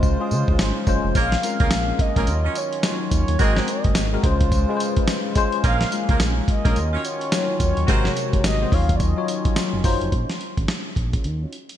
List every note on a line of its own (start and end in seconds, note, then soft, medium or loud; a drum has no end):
0.00 0.17 C#2 loud
0.00 1.13 C#3 medium
0.00 0.11 G#3 medium
0.00 2.24 G#3 medium
0.00 0.11 C#4 medium
0.00 0.11 F4 medium
0.00 1.13 F4 medium
0.00 0.12 C5 medium
0.00 1.13 C5 medium
0.00 kick medium
0.00 tambourine medium
0.20 0.77 G#3 medium
0.20 0.78 C#4 medium
0.20 0.78 F4 medium
0.20 0.78 G#4 loud
0.31 0.44 C#3 loud
0.31 tambourine medium
0.48 0.57 C#2 loud
0.48 kick loud
0.59 0.72 G#1 loud
0.59 snare loud
0.59 tambourine medium
0.87 1.00 F#1 medium
0.87 1.15 G#3 loud
0.87 1.15 C#4 medium
0.87 1.16 F4 medium
0.87 1.16 C5 loud
0.87 kick medium
0.87 tambourine medium
1.05 1.13 F1 loud
1.15 1.36 A#1 loud
1.15 2.26 A#3 medium
1.15 1.34 A#3 loud
1.15 1.34 C#4 loud
1.15 3.37 C#4 medium
1.15 1.34 F4 medium
1.15 1.34 G#4 medium
1.15 1.34 A#4 loud
1.15 2.02 F5 loud
1.15 kick loud
1.15 closed hi-hat medium
1.15 tambourine medium
1.32 snare medium
1.43 2.01 G#3 medium
1.43 1.51 C4 medium
1.43 2.02 F4 medium
1.43 2.02 A#4 medium
1.43 closed hi-hat medium
1.43 tambourine medium
1.50 2.05 C#4 medium
1.60 1.69 C#2 medium
1.60 1.74 A#3 medium
1.60 1.73 C#4 medium
1.60 1.73 F4 medium
1.60 1.74 G#4 medium
1.60 1.74 A#4 medium
1.60 kick loud
1.60 closed hi-hat medium
1.71 1.92 A#1 medium
1.71 snare loud
1.71 closed hi-hat medium
1.71 tambourine loud
1.99 2.59 D#5 loud
1.99 kick loud
1.99 closed hi-hat medium
2.16 2.25 A#1 medium
2.16 2.27 G#3 medium
2.16 2.30 A#3 medium
2.16 2.29 C#4 medium
2.16 2.28 C#4 medium
2.16 2.30 F4 medium
2.16 2.28 F4 medium
2.16 2.30 G#4 medium
2.16 2.30 A#4 medium
2.16 2.28 A#4 medium
2.16 kick loud
2.16 closed hi-hat medium
2.27 2.49 D#2 loud
2.27 3.38 D#3 medium
2.27 3.38 F#3 medium
2.27 3.38 F4 medium
2.27 closed hi-hat medium
2.27 tambourine medium
2.44 2.58 C#4 medium
2.44 2.58 D#4 medium
2.44 2.58 F4 medium
2.44 2.58 F#4 medium
2.44 2.58 C#5 medium
2.55 3.12 C#5 medium
2.55 closed hi-hat medium
2.55 tambourine medium
2.73 closed hi-hat medium
2.83 3.32 F#3 medium
2.83 3.32 D#4 medium
2.83 3.32 F4 medium
2.83 3.32 C#5 medium
2.83 snare loud
2.83 closed hi-hat medium
2.83 tambourine medium
3.11 3.25 D#2 medium
3.11 3.42 C#5 loud
3.11 kick medium
3.11 closed hi-hat medium
3.11 tambourine medium
3.28 3.37 D#2 loud
3.28 closed hi-hat medium
3.39 3.61 G#1 loud
3.39 3.98 G#3 medium
3.39 6.73 G#3 medium
3.39 3.66 A#3 loud
3.39 3.66 C4 loud
3.39 3.98 C4 medium
3.39 4.23 C4 medium
3.39 3.66 F#4 medium
3.39 3.98 F#4 medium
3.39 4.23 F#4 medium
3.39 3.66 G#4 loud
3.39 3.66 A#4 loud
3.39 3.98 A#4 loud
3.39 3.59 D#5 loud
3.39 kick loud
3.39 closed hi-hat medium
3.39 tambourine medium
3.57 3.70 C5 medium
3.57 snare medium
3.68 4.24 D#5 medium
3.68 closed hi-hat medium
3.68 tambourine medium
3.84 3.93 F#1 medium
3.84 kick loud
3.84 closed hi-hat soft
3.95 4.17 G#1 loud
3.95 snare loud
3.95 closed hi-hat medium
3.95 tambourine medium
4.13 4.23 G#3 medium
4.13 4.24 C4 medium
4.13 4.24 F#4 medium
4.13 4.24 A#4 medium
4.24 4.66 C#2 medium
4.24 5.62 C#3 medium
4.24 4.60 G#3 medium
4.24 4.60 C#4 medium
4.24 5.63 F4 medium
4.24 4.60 F4 medium
4.24 5.63 C5 medium
4.24 4.60 C5 medium
4.24 kick loud
4.24 closed hi-hat medium
4.41 kick medium
4.41 closed hi-hat medium
4.52 kick loud
4.52 closed hi-hat medium
4.52 tambourine medium
4.69 5.26 G#3 loud
4.69 5.27 C#4 medium
4.69 5.27 F4 medium
4.69 4.75 B4 medium
4.77 5.30 C5 medium
4.77 closed hi-hat medium
4.77 tambourine medium
4.96 kick loud
4.96 closed hi-hat medium
5.07 snare loud
5.07 closed hi-hat medium
5.07 tambourine loud
5.35 5.64 G#3 loud
5.35 5.64 C#4 medium
5.35 5.64 F4 loud
5.35 5.65 C5 loud
5.35 kick medium
5.35 closed hi-hat medium
5.35 tambourine medium
5.52 closed hi-hat medium
5.64 5.85 A#1 loud
5.64 5.83 A#3 loud
5.64 6.75 A#3 medium
5.64 5.82 C#4 loud
5.64 7.86 C#4 medium
5.64 5.82 F4 medium
5.64 5.82 G#4 medium
5.64 5.83 A#4 loud
5.64 6.17 F5 loud
5.64 kick loud
5.64 closed hi-hat medium
5.64 tambourine medium
5.81 snare medium
5.92 6.50 G#3 medium
5.92 6.50 C#4 medium
5.92 6.50 F4 medium
5.92 6.50 A#4 medium
5.92 closed hi-hat medium
5.92 tambourine medium
6.09 6.17 C#2 medium
6.09 6.23 A#3 medium
6.09 6.22 C#4 medium
6.09 6.22 F4 medium
6.09 6.22 G#4 medium
6.09 6.23 A#4 medium
6.09 kick loud
6.09 closed hi-hat medium
6.20 6.41 A#1 loud
6.20 snare loud
6.20 closed hi-hat medium
6.20 tambourine loud
6.48 7.01 D#5 loud
6.48 kick loud
6.48 closed hi-hat medium
6.64 6.73 A#1 loud
6.64 6.76 G#3 medium
6.64 6.78 A#3 medium
6.64 6.78 C#4 medium
6.64 6.76 C#4 medium
6.64 6.78 F4 medium
6.64 6.76 F4 medium
6.64 6.78 G#4 medium
6.64 6.78 A#4 medium
6.64 6.77 A#4 medium
6.64 kick medium
6.64 closed hi-hat medium
6.76 6.97 D#2 loud
6.76 7.87 D#3 medium
6.76 10.09 F#3 medium
6.76 7.87 F4 medium
6.76 closed hi-hat medium
6.76 tambourine medium
6.92 7.06 C#4 medium
6.92 7.06 D#4 medium
6.92 7.06 F4 medium
6.92 7.06 F#4 medium
6.92 7.06 C#5 medium
7.05 7.57 C#5 medium
7.05 closed hi-hat medium
7.05 tambourine medium
7.21 closed hi-hat medium
7.32 7.81 F#3 medium
7.32 7.81 D#4 medium
7.32 7.81 F4 medium
7.32 7.81 C#5 medium
7.32 snare loud
7.32 closed hi-hat medium
7.32 tambourine loud
7.60 7.73 D#2 medium
7.60 7.90 C#5 loud
7.60 kick medium
7.60 closed hi-hat medium
7.60 tambourine medium
7.77 7.86 D#2 medium
7.77 closed hi-hat medium
7.87 8.09 G#1 loud
7.87 8.46 C3 medium
7.87 8.72 C3 medium
7.87 8.46 G#3 medium
7.87 8.72 G#3 medium
7.87 8.14 C4 loud
7.87 8.14 F#4 loud
7.87 8.47 F#4 medium
7.87 8.14 G#4 medium
7.87 8.14 A#4 loud
7.87 8.47 A#4 loud
7.87 8.14 C5 loud
7.87 8.08 C5 loud
7.87 kick loud
7.87 closed hi-hat medium
7.87 tambourine medium
8.05 8.45 C#5 loud
8.05 snare medium
8.16 closed hi-hat medium
8.16 tambourine medium
8.33 8.42 F#1 medium
8.33 kick loud
8.33 closed hi-hat medium
8.44 8.65 G#1 loud
8.44 8.75 D#5 loud
8.44 snare loud
8.44 closed hi-hat medium
8.44 tambourine loud
8.61 8.72 G#3 medium
8.61 8.72 C4 medium
8.61 8.73 F#4 medium
8.61 8.73 C5 medium
8.72 9.15 D#2 loud
8.72 10.11 D#3 medium
8.72 9.08 F#3 medium
8.72 10.11 C#4 medium
8.72 9.08 D#4 medium
8.72 10.11 F4 medium
8.72 9.08 F4 medium
8.72 9.09 C#5 medium
8.72 8.97 F5 loud
8.72 kick loud
8.72 open hi-hat medium
8.89 kick medium
8.89 closed hi-hat medium
8.96 9.03 D5 medium
9.00 9.57 D#5 loud
9.00 kick medium
9.00 closed hi-hat medium
9.00 tambourine medium
9.17 9.75 F#3 medium
9.17 9.75 D#4 medium
9.17 9.75 F4 medium
9.17 9.75 C#5 medium
9.28 closed hi-hat medium
9.28 tambourine medium
9.45 kick loud
9.45 closed hi-hat medium
9.56 snare loud
9.56 closed hi-hat medium
9.56 tambourine loud
9.73 9.82 F1 medium
9.84 9.97 F#1 medium
9.84 10.12 F#3 loud
9.84 10.12 D#4 medium
9.84 10.13 F4 medium
9.84 10.13 C5 loud
9.84 kick loud
9.84 open hi-hat medium
9.84 tambourine medium
10.01 10.10 F1 medium
10.01 closed hi-hat medium
10.12 10.25 A#1 loud
10.12 10.31 C#4 loud
10.12 10.31 F4 medium
10.12 10.31 G#4 medium
10.12 10.31 A#4 medium
10.12 10.31 C#5 loud
10.12 kick medium
10.12 closed hi-hat medium
10.30 snare medium
10.41 closed hi-hat medium
10.57 10.66 G#1 medium
10.57 10.71 C#4 medium
10.57 10.71 F4 medium
10.57 10.71 G#4 medium
10.57 10.71 A#4 medium
10.57 10.71 C#5 medium
10.57 kick medium
10.57 closed hi-hat soft
10.68 snare loud
10.68 closed hi-hat medium
10.96 11.18 A#1 medium
10.96 kick medium
10.96 closed hi-hat medium
11.13 11.27 C#4 medium
11.13 11.26 F4 medium
11.13 11.27 G#4 medium
11.13 11.27 A#4 medium
11.13 11.27 C#5 medium
11.13 kick medium
11.13 closed hi-hat medium
11.24 11.46 D#2 loud
11.24 closed hi-hat medium
11.41 11.55 C#4 medium
11.41 11.55 D#4 medium
11.41 11.55 F4 medium
11.41 11.55 F#4 medium
11.41 11.55 C#5 medium
11.53 closed hi-hat medium
11.69 closed hi-hat medium